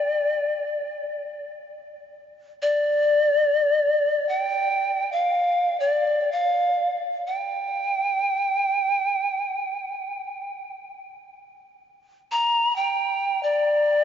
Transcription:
0.00 1.54 D5 medium
2.62 4.30 D5 medium
4.29 5.14 G5 medium
5.12 5.81 F5 medium
5.80 6.33 D5 medium
6.32 7.00 F5 medium
7.27 10.73 G5 medium
12.31 12.78 A#5 medium
12.76 13.45 G5 medium
13.43 14.04 D5 medium

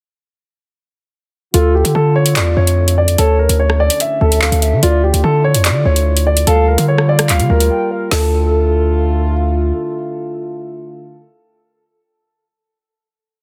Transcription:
1.54 1.84 D2 loud
1.54 6.43 D3 medium
1.54 3.17 A3 medium
1.54 4.79 E4 medium
1.54 3.17 F4 medium
1.54 1.72 F4 medium
1.54 1.93 A4 loud
1.54 closed hi-hat medium
1.75 1.92 G4 medium
1.85 1.94 D3 loud
1.85 closed hi-hat medium
1.95 2.38 D3 loud
1.95 2.13 A4 medium
2.16 2.33 C#5 medium
2.26 closed hi-hat medium
2.36 2.56 E2 loud
2.36 2.54 D5 medium
2.36 clap loud
2.36 closed hi-hat medium
2.57 3.16 F2 loud
2.57 2.95 C#5 medium
2.67 closed hi-hat medium
2.88 closed hi-hat medium
2.98 3.15 D5 medium
3.08 closed hi-hat medium
3.18 3.48 D2 loud
3.18 6.44 A3 medium
3.18 4.81 C#4 medium
3.18 3.36 A4 loud
3.18 3.57 C#5 loud
3.18 closed hi-hat medium
3.39 3.57 A#4 medium
3.49 3.89 D2 loud
3.49 closed hi-hat medium
3.59 3.77 C#5 medium
3.70 cross-stick medium
3.80 3.98 D5 loud
3.90 closed hi-hat medium
4.00 4.18 E5 medium
4.00 closed hi-hat medium
4.21 4.51 D2 loud
4.21 4.79 A4 medium
4.21 4.41 E5 medium
4.32 closed hi-hat medium
4.42 clap loud
4.52 4.74 D2 loud
4.52 closed hi-hat medium
4.62 4.82 E5 medium
4.62 closed hi-hat medium
4.73 4.82 D3 medium
4.83 5.12 D2 loud
4.83 6.46 E4 medium
4.83 6.46 F4 loud
4.83 5.00 F4 medium
4.83 5.21 D5 loud
4.83 closed hi-hat medium
5.03 5.21 G4 medium
5.14 5.23 D2 loud
5.14 closed hi-hat medium
5.24 5.56 D3 loud
5.24 5.42 A4 loud
5.44 5.62 C#5 medium
5.55 5.72 F2 loud
5.55 closed hi-hat medium
5.65 5.83 D5 medium
5.65 clap loud
5.65 closed hi-hat medium
5.70 5.85 D3 loud
5.85 6.45 D2 loud
5.85 6.24 C#5 medium
5.96 closed hi-hat medium
6.17 closed hi-hat medium
6.27 6.44 D5 medium
6.37 closed hi-hat medium
6.47 6.77 D2 loud
6.47 8.10 G3 medium
6.47 8.10 A#3 medium
6.47 8.10 F4 loud
6.47 6.65 A4 loud
6.47 6.86 F5 loud
6.47 closed hi-hat medium
6.68 6.85 A#4 medium
6.78 7.31 D3 loud
6.78 closed hi-hat medium
6.88 7.06 C#5 medium
6.98 cross-stick medium
7.09 7.27 D5 medium
7.19 cross-stick loud
7.19 closed hi-hat medium
7.29 7.41 C#2 loud
7.29 7.47 F5 loud
7.29 clap medium
7.29 closed hi-hat medium
7.40 7.49 D3 loud
7.40 closed hi-hat soft
7.50 7.70 D2 loud
7.50 8.08 A#4 medium
7.60 closed hi-hat medium
7.70 7.90 G5 medium
7.91 8.11 A#4 medium
8.11 9.72 D2 loud
8.11 11.25 D3 medium
8.11 11.25 A3 medium
8.11 11.25 E4 medium
8.11 11.25 F4 medium
8.11 9.31 A4 loud
8.11 9.31 A4 medium
8.11 snare loud
8.11 open hi-hat medium

